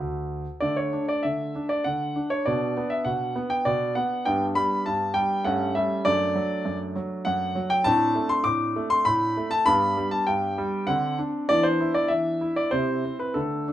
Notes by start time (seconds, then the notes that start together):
0.00 D2
0.60 D3 A3 D4 D5
0.76 C#5
0.93 D4
1.09 D5
1.23 D3 E5
1.55 D4
1.69 D5
1.84 D3 F#5
2.16 D4
2.30 C#5
2.46 B2 B3 D4 D5
2.77 B3
2.90 E5
3.05 B2 F#5
3.36 B3
3.50 G5
3.65 B2 D5
3.95 B3 F#5
4.25 G2 B3 D4 G5
4.55 G3 B5
4.86 G2 A5
5.14 G3 G5
5.45 G2 A3 C#4 F#5
5.75 G3 E5
6.05 F#2 A3 D4 D5
6.35 F#3
6.65 F#2
6.96 F#3
7.25 F#2 F#5
7.55 F#3
7.70 G5
7.84 A2 C4 D4 A5
8.15 A3
8.29 C6
8.44 A2 D6
8.76 A3
8.90 C6
9.05 A2 B5
9.37 A3
9.51 A5
9.66 G2 B3 D4 B5
9.97 G3
10.11 A5
10.27 G2 G5
10.58 G3
10.87 D3 C4 D4 F#5
11.19 D4
11.49 E3 B3 D4 D5
11.63 C5
11.81 E4
11.94 D5
12.08 E3 E5
12.41 E4
12.56 D5
12.71 C3 C4 E4 C5
13.05 C4
13.19 B4
13.34 D3 A3 D4 A4
13.68 D4